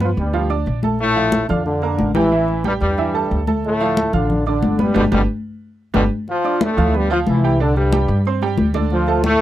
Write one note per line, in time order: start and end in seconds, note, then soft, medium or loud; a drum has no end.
0.00 0.11 G2 medium
0.00 0.10 F3 medium
0.00 0.28 B3 medium
0.00 0.10 F4 medium
0.00 0.28 B4 medium
0.00 0.28 B5 medium
0.00 high conga medium
0.17 0.63 D2 medium
0.17 0.54 G2 medium
0.17 0.54 G3 medium
0.17 high conga soft
0.33 0.47 F3 medium
0.33 0.47 F4 medium
0.33 0.47 F5 medium
0.33 high conga soft
0.50 0.77 D4 medium
0.50 0.77 D5 medium
0.50 0.77 D6 medium
0.50 high conga soft
0.66 1.44 A#1 medium
0.66 high conga soft
0.83 1.10 A3 medium
0.83 1.10 A4 medium
0.83 1.11 A5 medium
0.83 high conga medium
0.99 1.46 A2 medium
0.99 1.46 A3 loud
0.99 high conga soft
1.16 1.30 F3 medium
1.16 1.30 F4 medium
1.16 1.30 F5 medium
1.16 high conga soft
1.32 1.46 A3 medium
1.32 1.46 A4 medium
1.32 1.46 A5 medium
1.32 high conga medium
1.49 1.95 F2 medium
1.49 1.64 D3 medium
1.49 1.65 D4 medium
1.49 1.76 F4 medium
1.49 1.77 F5 medium
1.49 1.77 F6 medium
1.49 high conga soft
1.49 low conga medium
1.66 2.12 D3 medium
1.66 2.12 D4 medium
1.66 high conga soft
1.82 2.09 A#3 medium
1.82 2.10 A#4 medium
1.82 2.10 A#5 medium
1.82 high conga soft
1.99 2.76 A1 medium
1.99 high conga medium
2.15 2.61 E3 loud
2.15 2.29 G3 medium
2.15 2.61 E4 medium
2.15 2.29 G4 medium
2.15 2.29 G5 medium
2.15 high conga medium
2.32 2.59 E3 medium
2.32 2.59 E4 medium
2.32 2.59 E5 medium
2.32 high conga soft
2.48 high conga soft
2.64 2.74 G2 medium
2.64 2.92 G3 medium
2.64 2.73 G3 medium
2.64 2.92 G4 medium
2.64 2.92 G5 medium
2.64 high conga medium
2.81 3.27 E2 medium
2.81 3.44 G2 medium
2.81 3.43 G3 loud
2.81 high conga soft
2.98 3.11 E3 medium
2.98 3.11 E4 medium
2.98 3.12 E5 medium
2.98 high conga soft
3.14 3.41 A3 medium
3.14 3.42 A4 medium
3.14 3.42 A5 medium
3.14 high conga soft
3.31 4.08 D2 medium
3.31 high conga soft
3.47 3.75 A3 medium
3.47 3.75 A4 medium
3.47 3.75 A5 medium
3.47 high conga medium
3.64 4.11 A2 medium
3.64 4.11 A3 loud
3.64 high conga soft
3.81 3.94 F3 medium
3.81 3.94 F4 medium
3.81 3.94 F5 medium
3.81 high conga soft
3.97 4.11 A3 medium
3.97 4.11 A4 medium
3.97 4.11 A5 medium
3.97 high conga medium
4.13 4.59 A1 medium
4.13 4.45 D3 medium
4.13 4.45 D4 medium
4.13 4.40 F4 medium
4.13 4.41 F5 medium
4.13 4.41 F6 medium
4.13 high conga soft
4.13 low conga medium
4.30 high conga soft
4.30 low conga medium
4.46 4.78 D3 medium
4.46 4.74 D4 medium
4.46 4.78 D4 medium
4.46 4.74 D5 medium
4.46 4.74 D6 medium
4.46 high conga soft
4.62 4.93 G1 medium
4.62 high conga medium
4.79 4.97 G2 medium
4.79 4.95 G3 medium
4.79 4.93 B3 medium
4.79 4.93 B4 medium
4.79 4.93 B5 medium
4.79 high conga medium
4.94 5.08 G1 medium
4.94 5.04 B2 medium
4.94 5.04 D3 medium
4.94 5.04 G3 medium
4.94 5.05 D4 medium
4.94 5.05 G4 medium
4.94 5.06 B4 medium
4.94 high conga medium
5.12 5.25 G1 medium
5.12 5.21 B2 medium
5.12 5.21 D3 medium
5.12 5.21 G3 medium
5.12 5.22 D4 medium
5.12 5.23 G4 medium
5.12 5.23 B4 loud
5.12 high conga medium
5.94 6.07 G1 medium
5.94 6.03 B2 medium
5.94 6.03 D3 medium
5.94 6.03 G3 medium
5.94 6.05 D4 medium
5.94 6.05 G4 medium
5.94 6.05 B4 medium
5.94 high conga loud
6.28 6.60 F3 loud
6.28 6.59 F4 medium
6.28 high conga soft
6.44 6.71 D4 medium
6.44 6.72 D5 medium
6.44 6.72 D6 medium
6.44 high conga soft
6.61 6.95 A2 medium
6.61 6.95 A3 loud
6.61 high conga medium
6.77 7.23 D2 medium
6.77 6.90 F3 medium
6.77 6.91 F4 medium
6.77 6.91 F5 medium
6.77 high conga soft
6.77 low conga medium
6.93 7.11 G2 medium
6.93 7.12 G3 loud
6.93 7.07 B3 medium
6.93 7.07 B4 medium
6.93 7.07 B5 medium
6.93 high conga soft
7.10 7.37 F3 medium
7.10 7.19 F3 medium
7.10 7.37 F4 medium
7.10 7.19 F4 medium
7.10 7.37 F5 medium
7.10 high conga soft
7.27 8.03 C2 medium
7.27 7.58 E3 medium
7.27 7.58 E4 medium
7.27 high conga medium
7.44 7.57 G3 medium
7.44 7.57 G4 medium
7.44 7.57 G5 medium
7.60 7.87 D3 medium
7.60 7.76 D3 medium
7.60 7.87 D4 medium
7.60 7.76 D4 medium
7.60 7.87 D5 medium
7.60 high conga soft
7.76 8.22 G2 medium
7.76 8.22 G3 medium
7.76 high conga soft
7.92 8.20 G3 medium
7.92 8.20 G4 medium
7.92 8.20 G5 medium
7.92 high conga loud
8.08 8.54 G2 medium
8.08 high conga soft
8.25 8.40 C4 medium
8.25 8.40 C5 medium
8.25 8.40 C6 medium
8.25 high conga soft
8.42 8.69 G3 medium
8.42 8.69 G4 medium
8.42 8.69 G5 medium
8.42 high conga soft
8.58 9.35 D2 medium
8.58 high conga medium
8.74 9.01 D3 medium
8.74 9.01 D4 medium
8.74 9.02 D5 medium
8.74 high conga medium
8.90 9.22 F3 loud
8.90 9.22 F4 medium
8.90 high conga soft
9.07 9.34 A3 medium
9.07 9.35 A4 medium
9.07 9.35 A5 medium
9.07 high conga soft
9.24 9.41 A2 medium
9.24 9.41 A3 loud
9.24 high conga loud